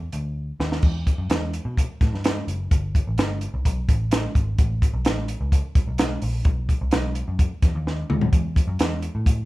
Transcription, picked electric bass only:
0.13 0.51 D2 medium
0.60 0.79 D#2 medium
0.83 1.11 E2 medium
1.18 1.28 F#2 medium
1.30 1.58 E2 medium
1.65 1.84 B2 medium
2.01 2.10 A2 medium
2.13 2.41 G2 medium
2.48 2.66 F#1 medium
2.72 2.99 G1 loud
3.07 3.16 A1 medium
3.18 3.46 G1 medium
3.54 3.63 C2 medium
3.66 3.84 B1 loud
3.89 4.26 A1 medium
4.35 4.54 G#1 medium
4.59 4.87 A1 medium
4.94 5.06 B1 medium
5.06 5.34 A1 medium
5.41 5.59 C#2 medium
5.76 5.85 C2 medium
5.88 6.15 B1 medium
6.22 6.41 A#1 medium
6.45 6.74 B1 medium
6.81 6.90 C2 medium
6.93 7.21 B1 medium
7.28 7.46 F#2 medium
7.63 7.72 E2 medium
7.75 8.03 D#2 medium
8.10 8.28 D#2 medium
8.33 8.60 E2 medium
8.68 8.77 F#2 medium
8.80 9.07 E2 medium
9.15 9.43 A2 loud

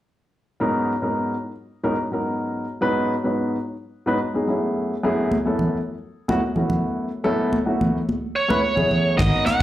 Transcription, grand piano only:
0.60 0.92 G#2 medium
0.60 0.91 F#3 medium
0.60 0.91 B3 medium
0.60 0.92 C#4 medium
0.60 0.92 D#4 medium
0.60 0.92 A#4 medium
1.02 1.33 G#2 medium
1.02 1.33 F#3 medium
1.02 1.33 B3 medium
1.02 1.33 C#4 medium
1.02 1.34 D#4 medium
1.02 1.34 A#4 medium
1.44 1.51 D#4 soft
1.44 1.51 F#4 soft
1.83 1.95 G#2 medium
1.83 1.95 F#3 medium
1.83 1.95 B3 medium
1.83 1.95 C#4 medium
1.83 1.95 D#4 medium
1.83 1.95 A#4 medium
1.98 2.06 D#4 soft
1.98 2.06 F#4 soft
2.11 2.64 G#2 medium
2.11 2.64 F#3 medium
2.11 2.64 B3 medium
2.11 2.64 C#4 medium
2.11 2.64 D#4 medium
2.11 2.65 A#4 medium
2.81 3.13 G#2 medium
2.81 3.13 F#3 medium
2.81 3.13 B3 medium
2.81 3.13 C#4 medium
2.81 3.13 D#4 medium
2.81 3.13 B4 loud
3.24 3.55 G#2 medium
3.24 3.55 F#3 medium
3.24 3.55 B3 medium
3.24 3.55 C#4 medium
3.24 3.55 D#4 medium
3.24 3.55 B4 medium
3.66 3.72 D#4 soft
3.66 3.73 C#5 soft
4.06 4.17 G#2 medium
4.06 4.17 F#3 medium
4.06 4.17 B3 medium
4.06 4.17 C#4 medium
4.06 4.17 D#4 medium
4.06 4.18 B4 medium
4.20 4.27 D#4 soft
4.20 4.28 B4 soft
4.34 4.48 G#2 medium
4.34 4.48 F#3 medium
4.34 4.46 B3 medium
4.34 4.47 C#4 medium
4.34 4.48 D#4 medium
4.34 4.47 G#4 medium
4.48 4.92 F#2 medium
4.48 4.93 A3 medium
4.48 4.92 B3 medium
4.48 4.93 C#4 medium
4.48 4.93 E4 medium
4.48 4.93 G#4 medium
5.03 5.34 F#2 loud
5.03 5.35 A3 medium
5.03 5.34 B3 medium
5.03 5.35 C#4 medium
5.03 5.35 E4 medium
5.03 5.35 G#4 loud
5.46 5.76 F#2 medium
5.46 5.76 A3 medium
5.46 5.76 B3 medium
5.46 5.76 C#4 medium
5.46 5.77 E4 medium
5.46 5.77 A4 medium
5.86 5.93 E4 soft
5.86 5.94 F#4 soft
6.28 6.39 F#2 medium
6.28 6.39 A3 medium
6.28 6.39 B3 medium
6.28 6.39 C#4 medium
6.28 6.39 E4 medium
6.28 6.39 F#4 loud
6.42 6.49 E4 soft
6.42 6.49 F#4 soft
6.56 7.07 F#2 medium
6.56 7.07 A3 medium
6.56 7.08 B3 medium
6.56 7.07 C#4 medium
6.56 7.07 E4 medium
6.56 7.08 F#4 medium
7.24 7.55 F#2 medium
7.24 7.55 A3 medium
7.24 7.55 B3 medium
7.24 7.55 C#4 medium
7.24 7.55 E4 medium
7.24 7.55 A4 loud
7.66 7.97 F#2 medium
7.66 7.97 A3 medium
7.66 7.97 B3 medium
7.66 7.97 C#4 medium
7.66 7.97 E4 medium
7.66 7.97 F#4 medium
8.09 8.15 E4 soft
8.09 8.15 G#4 soft
8.48 8.59 F#2 medium
8.48 8.59 A3 medium
8.48 8.59 B3 medium
8.48 8.59 C#4 medium
8.48 8.59 E4 medium
8.48 8.60 B4 loud
8.63 8.70 E4 soft
8.63 8.70 G#4 soft
8.75 9.18 F#2 medium
8.75 9.18 A3 medium
8.75 9.15 B3 medium
8.75 9.16 C#4 medium
8.75 9.18 E4 medium
8.75 9.18 G#4 medium
9.17 9.63 A#3 medium
9.17 9.63 B3 medium
9.17 9.63 C#4 medium
9.17 9.63 D#4 medium
9.17 9.63 F#4 medium

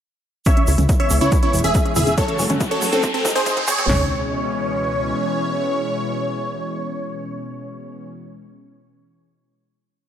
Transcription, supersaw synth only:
0.46 0.74 C#5 medium
0.46 0.74 E5 medium
1.00 1.18 C#5 medium
1.00 1.18 E5 medium
1.21 1.40 E4 medium
1.21 1.40 C#5 medium
1.43 1.61 E4 medium
1.43 1.61 C#5 medium
1.64 1.92 G#4 medium
1.64 1.92 E5 loud
1.96 2.15 G#4 medium
1.96 2.15 E5 loud
2.18 2.45 A4 medium
2.18 2.45 C#5 loud
2.71 2.90 A4 medium
2.71 2.90 C#5 medium
2.92 3.11 C4 medium
2.92 3.11 A4 medium
3.14 3.33 C4 medium
3.14 3.32 A4 loud
3.35 3.63 G#4 medium
3.35 3.63 C5 loud
3.68 3.86 G#4 medium
3.68 3.86 C#5 loud
3.89 8.08 C#5 loud

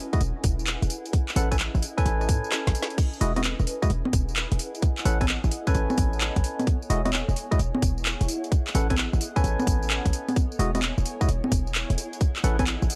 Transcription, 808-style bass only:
0.21 0.33 E1 loud
0.44 0.77 E1 medium
0.82 0.88 E1 medium
1.36 1.69 A1 loud
1.75 1.81 A1 medium
2.06 2.30 A1 loud
2.29 2.40 A2 medium
2.67 2.73 A1 medium
3.21 3.54 E1 loud
3.60 3.65 E1 medium
3.90 4.02 E1 loud
4.13 4.46 E1 medium
4.52 4.58 E1 medium
5.05 5.38 A1 loud
5.44 5.50 A1 medium
5.75 5.87 A1 loud
5.98 6.31 A1 medium
6.36 6.42 A1 medium
6.90 7.23 E1 loud
7.29 7.34 E1 medium
7.59 7.71 E1 loud
7.83 8.15 E1 medium
8.21 8.27 E1 medium
8.75 9.07 A1 loud
9.13 9.19 A1 medium
9.44 9.56 A1 loud
9.67 10.00 A1 medium
10.06 10.11 A1 medium
10.59 10.92 E1 loud
10.98 11.04 E1 medium
11.28 11.40 E1 loud
11.52 11.84 E1 medium
11.90 11.96 E1 medium
12.44 12.77 A1 loud
12.82 12.88 A1 medium

